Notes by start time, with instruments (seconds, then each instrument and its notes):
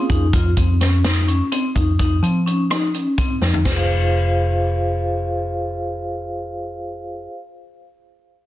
Already playing: tine electric piano A#3 C#4 F4 G#4
0.10 picked electric bass F2, vibraphone D#4, kick, closed hi-hat
0.33 picked electric bass F2, vibraphone F4, kick, closed hi-hat
0.57 picked electric bass F2, vibraphone C4, kick, closed hi-hat
0.81 vibraphone C#4, snare, closed hi-hat
1.04 vibraphone D#4, snare, closed hi-hat
1.28 vibraphone C#4, closed hi-hat
1.52 vibraphone C4, closed hi-hat
1.75 picked electric bass F2, vibraphone D#4, kick, closed hi-hat
1.99 picked electric bass F2, vibraphone D#4, kick, closed hi-hat
2.23 picked electric bass F3, vibraphone C4, closed hi-hat
2.46 vibraphone C#4, closed hi-hat
2.70 vibraphone D#4, cross-stick, closed hi-hat
2.94 vibraphone C#4, closed hi-hat
3.18 vibraphone C4, kick, closed hi-hat
3.42 picked electric bass F2, vibraphone D#4, snare
3.54 floor tom
3.65 picked electric bass F1, vibraphone F4 G#4, kick, snare, crash
3.73 vibraphone C5 F5